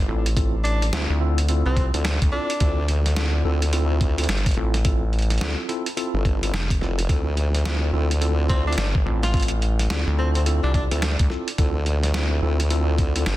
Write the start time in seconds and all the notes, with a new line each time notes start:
Already playing: impact
0.08 A1 C4 E4 F4 A4
0.26 closed hi-hat
0.37 C4 E4 F4 A4, kick, closed hi-hat
0.64 D4, closed hi-hat
0.82 snare, closed hi-hat
0.92 D2 C4 E4 F4 A4, snare, closed hi-hat
1.10 D2
1.21 C4 E4 F4 A4
1.38 closed hi-hat
1.49 C4 E4 F4 A4, closed hi-hat
1.66 C2 C4
1.77 kick, closed hi-hat
1.94 D2 C4 E4 F4 A4, closed hi-hat
2.05 snare, closed hi-hat
2.22 D2, kick, closed hi-hat
2.32 C4 D4 E4 F4 A4
2.50 closed hi-hat
2.60 D2 C4 E4 F4 A4, kick, closed hi-hat
2.88 closed hi-hat
3.06 snare, closed hi-hat
3.16 C4 E4 F4 A4, snare, closed hi-hat
3.44 D2 C4 E4 F4 A4
3.62 closed hi-hat
3.73 C4 E4 F4 A4, closed hi-hat
4.01 kick, closed hi-hat
4.18 C4 E4 F4 A4, closed hi-hat
4.24 closed hi-hat
4.29 G1, snare, closed hi-hat
4.37 closed hi-hat
4.46 kick, closed hi-hat
4.49 closed hi-hat
4.51 closed hi-hat
4.54 A1 C4 E4 F4 A4, closed hi-hat
4.74 snare, closed hi-hat
4.85 C4 E4 F4 A4, kick, closed hi-hat
5.13 closed hi-hat
5.19 closed hi-hat
5.22 closed hi-hat
5.30 snare, closed hi-hat
5.38 D2 C4 E4 F4 A4, snare, closed hi-hat
5.41 closed hi-hat
5.69 C4 E4 F4 A4, closed hi-hat
5.86 closed hi-hat
5.97 C4 E4 F4 A4, closed hi-hat
6.14 G1
6.25 kick, closed hi-hat
6.42 C4 E4 F4 A4, closed hi-hat
6.53 F1, snare, closed hi-hat
6.70 kick, closed hi-hat
6.81 F1 C4 E4 F4 A4, snare
6.99 closed hi-hat
7.09 D2 C4 E4 F4 A4, kick, closed hi-hat
7.37 closed hi-hat
7.55 snare, closed hi-hat
7.65 C4 E4 F4 A4, snare, closed hi-hat
7.93 D2 C4 E4 F4 A4
8.11 closed hi-hat
8.21 C4 E4 F4 A4, closed hi-hat
8.49 C4, kick, closed hi-hat
8.67 C4 D4 E4 F4 A4
8.73 closed hi-hat
8.77 G1 D4, snare, closed hi-hat
8.95 kick
9.06 A1 C4 E4 F4 A4
9.23 F4, snare, closed hi-hat
9.34 C4 E4 F4 A4, kick, closed hi-hat
9.37 closed hi-hat
9.40 closed hi-hat
9.42 closed hi-hat
9.48 closed hi-hat
9.62 closed hi-hat
9.79 snare, closed hi-hat
9.90 D2 C4 E4 F4 A4, snare, closed hi-hat
10.07 D2
10.18 C4 E4 F4 A4
10.35 C4, closed hi-hat
10.46 C4 E4 F4 A4, closed hi-hat
10.63 C2 D4
10.74 D4, kick, closed hi-hat
10.91 D2 C4 E4 F4 A4, closed hi-hat
11.02 snare, closed hi-hat
11.19 D2, kick, closed hi-hat
11.30 C4 E4 F4 A4, snare
11.48 closed hi-hat
11.58 D2 C4 E4 F4 A4, kick, closed hi-hat
11.86 closed hi-hat
12.03 snare, closed hi-hat
12.14 C4 E4 F4 A4, snare, closed hi-hat
12.42 D2 C4 E4 F4 A4
12.60 closed hi-hat
12.70 C4 E4 F4 A4, closed hi-hat
12.98 kick, closed hi-hat
13.16 C4 E4 F4 A4, closed hi-hat
13.26 G1, snare, closed hi-hat